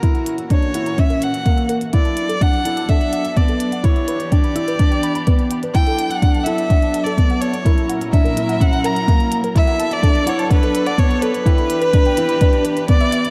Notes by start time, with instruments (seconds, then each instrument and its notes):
Already playing: string section F#4, violin A#4
0.02 string section A#2 E3 A#3 C#4, felt piano E4, kick, closed hi-hat
0.15 synth arpeggio sound F#5, closed hi-hat
0.26 synth arpeggio sound A#5, closed hi-hat
0.38 synth arpeggio sound E6, closed hi-hat
0.50 felt piano D4, synth arpeggio sound A#4, violin C#5, kick, closed hi-hat
0.62 closed hi-hat
0.74 felt piano E4, synth arpeggio sound F#5, closed hi-hat
0.86 synth arpeggio sound A#5, closed hi-hat
0.98 felt piano C#4, violin E5, synth arpeggio sound E6, kick, closed hi-hat
1.10 synth arpeggio sound A#4, closed hi-hat
1.22 violin F#5, closed hi-hat
1.33 synth arpeggio sound F#5, closed hi-hat
1.45 felt piano A#3, synth arpeggio sound A#5, kick, closed hi-hat
1.57 synth arpeggio sound E6, closed hi-hat
1.69 synth arpeggio sound A#4, closed hi-hat
1.81 closed hi-hat
1.93 string section F#3 B3 D4 A4, felt piano E4, violin D5, synth arpeggio sound F#5, kick, closed hi-hat
2.05 synth arpeggio sound A5, closed hi-hat
2.17 synth arpeggio sound D6, closed hi-hat
2.29 synth arpeggio sound A4, closed hi-hat
2.41 felt piano D4, violin F#5, kick, closed hi-hat
2.52 synth arpeggio sound F#5, closed hi-hat
2.65 felt piano E4, synth arpeggio sound A5, closed hi-hat
2.77 synth arpeggio sound D6, closed hi-hat
2.89 felt piano D4, synth arpeggio sound A4, violin E5, kick, closed hi-hat
3.01 closed hi-hat
3.13 synth arpeggio sound F#5, closed hi-hat
3.25 synth arpeggio sound A5, closed hi-hat
3.36 felt piano B3, violin D5, synth arpeggio sound D6, kick, closed hi-hat
3.48 synth arpeggio sound A4, closed hi-hat
3.60 closed hi-hat
3.72 synth arpeggio sound F#5, closed hi-hat
3.83 string section E3 G4, felt piano E4, violin C#5, synth arpeggio sound B5, kick, closed hi-hat
3.96 synth arpeggio sound E6, closed hi-hat
4.08 synth arpeggio sound B4, closed hi-hat
4.20 closed hi-hat
4.32 felt piano D4, violin D5, synth arpeggio sound G5, kick, closed hi-hat
4.44 synth arpeggio sound B5, closed hi-hat
4.55 felt piano E4, synth arpeggio sound E6, closed hi-hat
4.68 synth arpeggio sound B4, closed hi-hat
4.79 felt piano D4, kick, closed hi-hat
4.91 synth arpeggio sound G5, closed hi-hat
5.03 synth arpeggio sound B5, closed hi-hat
5.15 synth arpeggio sound B5, closed hi-hat
5.27 felt piano B3, synth arpeggio sound B4, kick, closed hi-hat
5.39 closed hi-hat
5.51 synth arpeggio sound G5, closed hi-hat
5.63 synth arpeggio sound B4, closed hi-hat
5.74 string section F#3 A4, felt piano E4, violin G5, synth arpeggio sound A5, kick, closed hi-hat
5.87 synth arpeggio sound A4, closed hi-hat
5.99 closed hi-hat
6.10 violin F#5, synth arpeggio sound F#5, closed hi-hat
6.22 felt piano D4, synth arpeggio sound A5, kick, closed hi-hat
6.35 synth arpeggio sound A5, closed hi-hat
6.44 felt piano E4, synth arpeggio sound A4, violin E5, closed hi-hat
6.58 closed hi-hat
6.70 felt piano D4, synth arpeggio sound F#5, kick, closed hi-hat
6.82 synth arpeggio sound A5, closed hi-hat
6.94 synth arpeggio sound A5, closed hi-hat
7.04 synth arpeggio sound A4, violin D5, closed hi-hat
7.18 felt piano B3, kick, closed hi-hat
7.30 synth arpeggio sound F#5, closed hi-hat
7.41 violin C#5, synth arpeggio sound A5, closed hi-hat
7.54 synth arpeggio sound A5, closed hi-hat
7.65 string section A#2 C#4 E4 A#4, felt piano E4, synth arpeggio sound A#4, kick, closed hi-hat
7.78 closed hi-hat
7.89 synth arpeggio sound F#5, closed hi-hat
8.01 synth arpeggio sound A#5, closed hi-hat
8.12 felt piano D4, violin E5, synth arpeggio sound A#5, kick, closed hi-hat
8.24 synth arpeggio sound A#4, closed hi-hat
8.37 felt piano E4, closed hi-hat
8.49 synth arpeggio sound F#5, closed hi-hat
8.60 felt piano C#4, violin F#5, synth arpeggio sound A#5, kick, closed hi-hat
8.72 synth arpeggio sound A#5, closed hi-hat
8.84 synth arpeggio sound A#4, violin A#5, closed hi-hat
8.96 closed hi-hat
9.08 felt piano A#3, synth arpeggio sound F#5, kick, closed hi-hat
9.20 synth arpeggio sound A#5, closed hi-hat
9.32 synth arpeggio sound A#5, closed hi-hat
9.44 synth arpeggio sound A#4, closed hi-hat
9.55 string section B3 D4 A4, felt piano E4, violin E5, kick, closed hi-hat
9.67 synth arpeggio sound F#5, closed hi-hat
9.80 synth arpeggio sound A5, closed hi-hat
9.91 violin D5, synth arpeggio sound A5, closed hi-hat
10.03 felt piano D4, synth arpeggio sound A4, kick, closed hi-hat
10.15 closed hi-hat
10.26 felt piano E4, violin C#5, synth arpeggio sound F#5, closed hi-hat
10.39 synth arpeggio sound A5, closed hi-hat
10.50 felt piano D4, violin B4, kick, closed hi-hat
10.63 synth arpeggio sound A4, closed hi-hat
10.75 closed hi-hat
10.86 violin D5, synth arpeggio sound F#5, closed hi-hat
10.98 felt piano B3, violin C#5, synth arpeggio sound A5, kick, closed hi-hat
11.11 synth arpeggio sound A5, closed hi-hat
11.22 synth arpeggio sound A4, violin B4, closed hi-hat
11.34 closed hi-hat
11.45 string section E3 G4, felt piano E4, synth arpeggio sound G5, kick, closed hi-hat
11.58 synth arpeggio sound B5, closed hi-hat
11.70 synth arpeggio sound B5, closed hi-hat
11.81 synth arpeggio sound B4, closed hi-hat
11.93 felt piano D4, kick, closed hi-hat
12.05 synth arpeggio sound G5, closed hi-hat
12.17 felt piano E4, synth arpeggio sound B5, closed hi-hat
12.29 synth arpeggio sound B5, closed hi-hat
12.41 felt piano D4, synth arpeggio sound B4, kick, closed hi-hat
12.53 closed hi-hat
12.65 synth arpeggio sound B4, closed hi-hat
12.77 synth arpeggio sound B5, closed hi-hat
12.88 felt piano B3, synth arpeggio sound D5, violin D5, kick, closed hi-hat
13.00 synth arpeggio sound E5, closed hi-hat
13.12 synth arpeggio sound E5, closed hi-hat
13.24 synth arpeggio sound D6, closed hi-hat